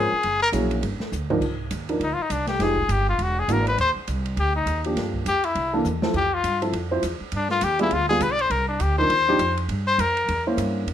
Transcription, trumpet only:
Already playing: G#4
0.43 A#4
2.03 D#4
2.14 F4
2.22 D#4
2.32 D4
2.48 G4
2.63 G#4
2.92 G4
3.10 F4
3.23 F#4
3.39 G#4
3.52 A#4
3.68 B4
3.81 C5
4.40 G4
4.56 D#4
5.28 G4
5.45 E4
6.16 G4
6.34 F4
7.36 D4
7.51 F4
7.64 G4
7.81 E4
7.93 F4
8.09 G#4
8.22 B4
8.32 D5
8.41 C5
8.51 A#4
8.69 D4
8.82 G4
8.98 C5
9.88 C5
10.01 A#4

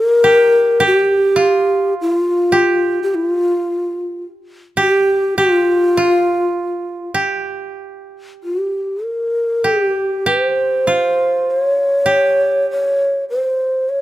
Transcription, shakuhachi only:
Already playing: G4
0.06 A#4
0.86 G4
2.01 F4
3.03 G4
3.15 E4
3.27 F4
4.80 G4
5.37 F4
8.44 G4
9.04 A#4
9.85 G4
10.27 B4
10.43 C5
11.51 C#5
12.71 C#5
13.30 C5
13.89 C#5

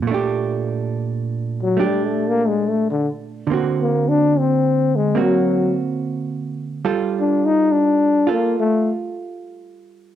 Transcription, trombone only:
1.63 F#3
1.86 G3
2.07 A3
2.28 A#3
2.48 G#3
2.69 A3
2.91 D3
3.82 A#3
4.08 D4
4.39 C4
4.96 G#3
5.22 F#3
7.20 D4
7.46 D#4
7.72 D4
8.31 A#3
8.60 A3

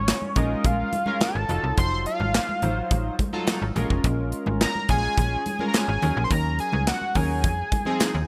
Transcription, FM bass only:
Already playing: G#1
0.36 A#1
0.65 A#1
1.35 G#1
1.49 F1
1.64 C2
1.78 F1
2.20 G#1
2.63 A1
2.91 A1
3.62 G#1
3.76 A#1
3.90 F1
4.04 A#1
4.47 G#1
4.89 A#1
5.18 A#1
5.88 G#1
6.03 D#2
6.17 A#1
6.31 D#2
6.73 C#2
7.15 D#2
7.44 F2
8.15 D#2

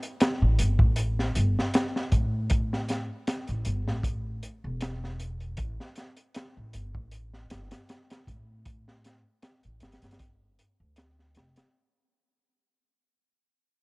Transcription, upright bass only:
0.42 A1
0.60 G1
0.79 A1
1.36 G1
2.12 A2
3.49 A1
3.66 G1
3.87 A1
4.64 E1
5.58 A1
6.57 A1
6.75 G1
6.95 A1
7.51 G1
8.27 A2
9.65 A1
9.82 G1
10.03 G1
10.80 D2
11.36 F1

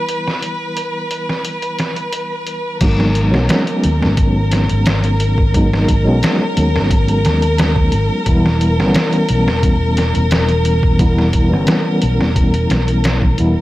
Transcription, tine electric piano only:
Already playing: E3 G3 B3 E4
2.81 F#3 G#3 B3 D#4
3.32 F#3 G#3 B3
3.37 C#4
5.54 F#3 G#3 B3 D#4
6.04 F#3 G#3 B3
6.09 C#4
8.26 E3 G3 B3 E4
8.77 E3 G3 B3
8.82 C#4
10.99 E3 G3 B3 E4
11.49 E3 G3 B3
11.55 C#4
13.38 E3 G3 B3 E4

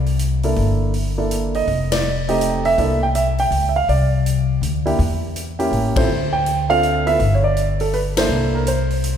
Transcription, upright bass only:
Already playing: C2
0.57 G1
1.67 F1
2.78 C2
3.51 C#2
3.88 C2
4.61 D2
4.99 E2
5.71 A1
6.08 D2
7.19 G1
8.29 C2

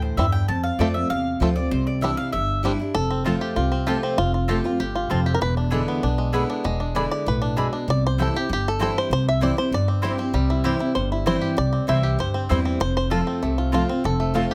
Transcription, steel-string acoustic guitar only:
Already playing: A2
0.18 G2
0.49 F2
0.79 F3 A3 C4 F4
0.94 C4 F4
1.10 C3
1.40 F3 A3 C4 F4
1.55 C4 F4
1.71 C3
2.01 E3 G3 D4 E4
2.17 D4 E4
2.33 G2
2.63 E3 G3 D4 E4
2.79 D4 E4
2.95 F2
3.26 F3 A3 C4 F4
3.56 C3
3.86 F3 A3 C4 F4
4.18 F2
4.49 F3 A3 C4 F4
4.64 C4 F4
4.80 G2
5.11 F2
5.41 E2
5.72 D3 G#3 B3 E4
6.03 B2
6.33 D3 G#3 B3 E4
6.64 E2
6.95 D3 G#3 B3 E4
7.26 A2
7.58 B2
7.88 C3
8.18 E3 G3 C4 E4
8.34 C4 E4
8.49 G2
8.79 E3 G3 C4 E4
9.11 C3
9.41 E3 G3 C4 E4
9.57 C4 E4
9.72 G2
10.03 E3 G3 C4 E4
10.18 C4 E4
10.34 C3
10.64 E3 G3 C4 E4
10.79 C4 E4
10.95 G2
11.26 E3 G3 C4 E4
11.57 C3
11.87 E3 G3 C4 E4
12.19 G2
12.50 E3 G3 C4 E4
12.80 F2
13.11 F3 A3 C4 F4
13.42 C3
13.73 F3 A3 C4 F4
13.89 C4 F4
14.04 F2
14.34 F3 A3 C4 F4

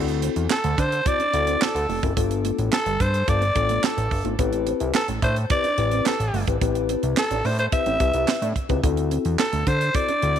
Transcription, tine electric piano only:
Already playing: C4 E4 F#4
0.01 A4
1.06 C4 E4 F#4 C5
1.33 C4 E4 F#4 A4
2.02 C4 E4 F#4 A4
2.16 B3 D4 F4 A4
3.28 B3 D4 F4 A4
3.55 B3 D4 F4 A4
4.24 B3 D4 F4 A4
4.39 C4 E4 G4 B4
5.50 C4 E4 G4 B4
5.78 C4 E4 G4 B4
6.48 C4 E4 G4 B4
6.61 C4 E4 G4 B4
7.72 C4 E4 G4 B4
8.00 C4 E4 G4 B4
8.69 C4 E4 G4 B4
8.83 C4 E4 F#4 A4
9.94 C4 E4 F#4 A4
10.22 C4 E4 F#4 A4

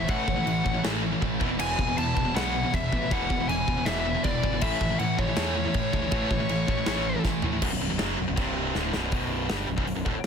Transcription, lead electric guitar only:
Already playing: E5
0.09 F#5
1.60 G#5
1.98 A5
2.36 F#5
2.74 E5
3.12 F#5
3.49 G#5
3.86 E5
4.24 D5
4.62 E5
4.99 F#5
5.19 C#5

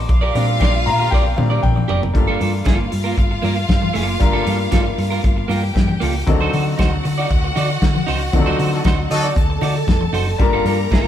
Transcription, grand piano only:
Already playing: F#3 C4 D#4 A5 C6 D6
0.35 G3 C4 D4
0.86 A#5
1.11 G5
1.36 G3 C4 D4 F5
1.63 G5
2.13 G3 A#3 D4 F4 A4
4.19 G3 A#3 D4 F4 A#4
6.27 F#3 C4 D4 D#4 A4
8.33 F3 C4 D4 D#4 A4
8.39 F#3
10.38 G3 A#3 D4 F4 A#4

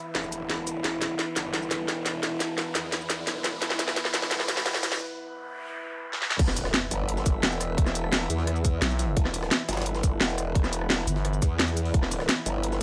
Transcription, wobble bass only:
0.15 F1
0.50 E1
0.84 E1
1.36 G1
1.88 E1
2.75 E2
3.27 B1
3.62 E1
4.14 G1
4.66 E1
6.39 E1
6.91 G1
7.43 E1
8.30 E2
9.17 E1
9.69 G1
10.21 E1
11.42 E2
11.94 E1
12.46 G1

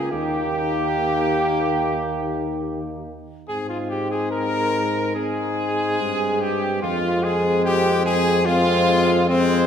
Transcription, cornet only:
Already playing: G#4
0.11 G4
3.49 G#4
3.69 F4
3.90 G4
4.12 G#4
4.32 A#4
5.15 G#4
6.42 G4
6.83 F4
7.24 G#4
7.65 G4
8.06 G#4
8.46 F4
9.30 C4

